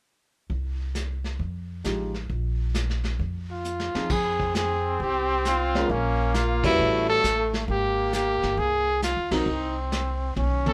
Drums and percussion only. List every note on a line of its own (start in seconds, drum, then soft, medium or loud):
0.50 brush sweep soft
0.50 kick soft
0.95 snare soft
0.95 hi-hat pedal soft
1.24 snare soft
1.40 brush sweep soft
1.40 kick soft
1.84 snare soft
1.84 hi-hat pedal soft
2.14 snare soft
2.29 brush sweep soft
2.29 kick soft
2.74 snare soft
2.74 hi-hat pedal soft
2.89 snare soft
3.04 snare soft
3.19 brush sweep soft
3.19 kick soft
3.65 hi-hat pedal soft
3.80 snare soft
3.95 snare medium
4.10 brush sweep soft
4.10 kick medium
4.10 crash medium
4.40 kick soft
4.55 snare medium
4.55 hi-hat pedal soft
5.00 brush sweep soft
5.00 kick soft
5.45 snare medium
5.45 hi-hat pedal soft
5.75 snare soft
5.89 brush sweep soft
5.89 kick soft
6.34 snare medium
6.34 hi-hat pedal soft
6.64 kick medium
6.64 ride medium
6.79 brush sweep soft
7.24 snare medium
7.24 hi-hat pedal medium
7.54 snare soft
7.68 brush sweep soft
7.68 kick soft
8.13 snare medium
8.13 hi-hat pedal medium
8.42 snare soft
8.58 brush sweep soft
8.58 kick soft
9.02 snare medium
9.02 hi-hat pedal medium
9.31 snare medium
9.31 ride medium
9.47 brush sweep soft
9.92 snare medium
9.92 hi-hat pedal soft
10.36 high tom soft
10.66 high tom medium